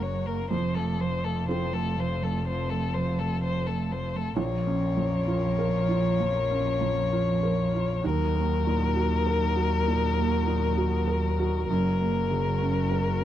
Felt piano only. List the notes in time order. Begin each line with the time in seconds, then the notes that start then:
Already playing: A#3 C#4 A#4
0.51 F2
1.48 C4 F4 A4
4.37 A#1
4.67 C#4
4.97 F2
5.28 F4
5.59 A#4
5.89 F4
6.20 F2
6.50 C#4
6.81 F2
7.13 F4
7.43 A#4
7.74 F4
8.04 D#2
8.36 A#3
8.67 A#2
8.96 F#4
9.27 A#4
9.56 F#4
9.88 A#2
10.18 A#3
10.47 A#2
10.77 F#4
11.08 A#4
11.39 F#4
11.70 F#2
12.00 A#3
12.30 C#3
12.61 C#4
12.92 A#4
13.21 C#4